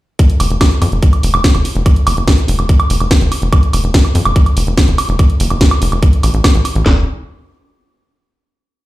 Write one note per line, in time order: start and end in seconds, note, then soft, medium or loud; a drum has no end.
0.19 kick loud
0.19 closed hi-hat loud
0.30 closed hi-hat soft
0.40 0.47 F1 loud
0.40 open hi-hat loud
0.40 high woodblock soft
0.50 0.57 F1 medium
0.50 closed hi-hat soft
0.61 kick loud
0.61 snare loud
0.61 closed hi-hat loud
0.61 high woodblock medium
0.71 closed hi-hat soft
0.82 0.88 F2 loud
0.82 open hi-hat loud
0.82 high woodblock soft
0.92 0.99 F1 medium
0.92 closed hi-hat soft
1.03 kick loud
1.03 closed hi-hat medium
1.13 closed hi-hat soft
1.13 high woodblock soft
1.23 1.30 F1 medium
1.23 open hi-hat loud
1.34 1.40 F1 medium
1.34 closed hi-hat soft
1.34 high woodblock medium
1.44 kick loud
1.44 snare loud
1.44 closed hi-hat loud
1.55 1.61 F1 medium
1.55 closed hi-hat soft
1.55 high woodblock soft
1.65 open hi-hat medium
1.75 1.82 F1 medium
1.75 closed hi-hat soft
1.86 kick loud
1.86 closed hi-hat loud
1.86 high woodblock soft
1.96 closed hi-hat soft
2.07 2.13 F#1 loud
2.07 open hi-hat loud
2.07 high woodblock medium
2.17 2.24 F#1 medium
2.17 closed hi-hat soft
2.28 kick loud
2.28 snare loud
2.28 closed hi-hat loud
2.28 high woodblock soft
2.38 closed hi-hat soft
2.48 2.55 F1 loud
2.48 open hi-hat loud
2.59 2.65 F1 medium
2.59 closed hi-hat soft
2.59 high woodblock soft
2.69 kick loud
2.69 closed hi-hat medium
2.80 closed hi-hat soft
2.80 high woodblock medium
2.90 2.97 F1 medium
2.90 open hi-hat loud
3.00 3.07 F1 medium
3.00 closed hi-hat soft
3.00 high woodblock soft
3.11 kick loud
3.11 snare loud
3.11 closed hi-hat loud
3.21 3.28 F1 medium
3.21 closed hi-hat soft
3.32 open hi-hat loud
3.32 high woodblock soft
3.42 3.49 F1 medium
3.42 closed hi-hat soft
3.53 kick loud
3.53 closed hi-hat medium
3.53 high woodblock medium
3.63 closed hi-hat soft
3.73 3.80 F1 loud
3.73 open hi-hat loud
3.73 high woodblock soft
3.84 3.90 F1 medium
3.84 closed hi-hat soft
3.94 kick loud
3.94 snare loud
3.94 closed hi-hat medium
4.05 closed hi-hat soft
4.05 high woodblock soft
4.15 4.22 F2 loud
4.15 open hi-hat loud
4.25 4.32 F1 medium
4.25 closed hi-hat soft
4.25 high woodblock medium
4.36 kick loud
4.36 closed hi-hat medium
4.46 closed hi-hat soft
4.46 high woodblock soft
4.57 4.63 F1 medium
4.57 open hi-hat loud
4.67 4.74 F1 medium
4.67 closed hi-hat soft
4.78 kick loud
4.78 snare loud
4.78 closed hi-hat loud
4.78 high woodblock soft
4.88 4.95 F1 medium
4.88 closed hi-hat soft
4.98 open hi-hat loud
4.98 high woodblock medium
5.09 5.15 F1 medium
5.09 closed hi-hat soft
5.19 kick loud
5.19 closed hi-hat medium
5.19 high woodblock soft
5.30 closed hi-hat soft
5.40 5.47 F#1 loud
5.40 open hi-hat loud
5.50 5.57 F#1 medium
5.50 closed hi-hat soft
5.50 high woodblock soft
5.61 kick loud
5.61 snare loud
5.61 closed hi-hat medium
5.71 closed hi-hat soft
5.71 high woodblock medium
5.82 5.88 F1 loud
5.82 open hi-hat loud
5.92 5.99 F1 medium
5.92 closed hi-hat soft
5.92 high woodblock soft
6.03 kick loud
6.03 closed hi-hat medium
6.13 closed hi-hat soft
6.23 6.30 A1 loud
6.23 open hi-hat loud
6.23 high woodblock soft
6.34 6.40 A1 medium
6.34 closed hi-hat soft
6.44 kick loud
6.44 snare loud
6.44 closed hi-hat medium
6.44 high woodblock medium
6.55 6.61 A1 medium
6.55 closed hi-hat soft
6.65 open hi-hat loud
6.65 high woodblock soft
6.75 6.82 A1 medium
6.75 closed hi-hat soft
6.86 7.05 F1 medium
6.86 kick loud
6.86 snare loud